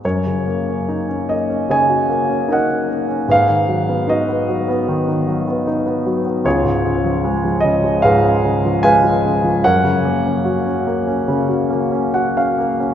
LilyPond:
<<
  \new Staff \with { instrumentName = "Grand piano" } { \time 4/4 \key fis \major \tempo 4 = 75 << { cis''4. dis''8 gis''4 fis''4 | eis''4 dis''2 r4 | cis''4. dis''8 eis''4 gis''4 | fis''2. fis''16 eis''8. | } \\ { ais'2 <cis'' dis''>4 <ais' dis''>4 | b'4 <fis' b'>2 r4 | <eis' gis'>2 <gis' b'>4 <b' eis''>4 | <ais' cis''>2. r4 | } >> }
  \new Staff \with { instrumentName = "Grand piano" } { \time 4/4 \key fis \major fis,16 cis16 ais16 cis'16 dis'16 cis'16 ais16 cis'16 cis16 fis'16 ais16 cis'16 dis'16 cis'16 ais16 cis'16 | gis,16 dis16 fis16 b16 dis'16 b16 fis16 b16 dis16 dis'16 fis16 b16 dis'16 b16 fis16 b16 | cis,16 gis,16 cis16 eis16 gis16 eis16 cis16 eis16 gis,16 cis'16 cis16 eis16 gis16 eis16 cis16 eis16 | fis,16 cis16 ais16 cis'16 fis'16 cis'16 ais16 cis'16 cis16 fis'16 ais16 cis'16 fis'16 cis'16 ais16 cis'16 | }
>>